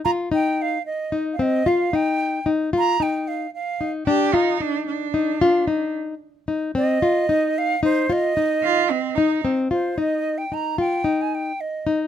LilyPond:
<<
  \new Staff \with { instrumentName = "Flute" } { \time 5/8 \key f \dorian \tempo 4 = 112 bes''8 g''8 f''8 ees''8. r32 f''32 | ees''8 f''8 g''4 r8 | bes''8 g''8 f''8 f''8. r16 | r2 r8 |
r2 r8 | ees''4. f''8 c''8 | ees''2 r8 | r8 c''8 ees''8. g''16 bes''8 |
g''8. aes''16 g''8 ees''8. r16 | }
  \new Staff \with { instrumentName = "Cello" } { \time 5/8 \key f \dorian r2 r8 | r2 r8 | r2 r8 | g'8 ees'8 d'8 d'4~ |
d'4 r4. | r2 r8 | r4 f'8 c'8 ees'8 | r2 r8 |
r2 r8 | }
  \new Staff \with { instrumentName = "Nylon-string guitar" } { \time 5/8 \key f \dorian f'8 ees'4 r8 ees'8 | c'8 f'8 ees'4 ees'8 | f'8 ees'4 r8 ees'8 | d'8 f'8 ees'4 ees'8 |
f'8 ees'4 r8 ees'8 | c'8 f'8 ees'4 ees'8 | f'8 ees'4 r8 ees'8 | c'8 f'8 ees'4 ees'8 |
f'8 ees'4 r8 ees'8 | }
>>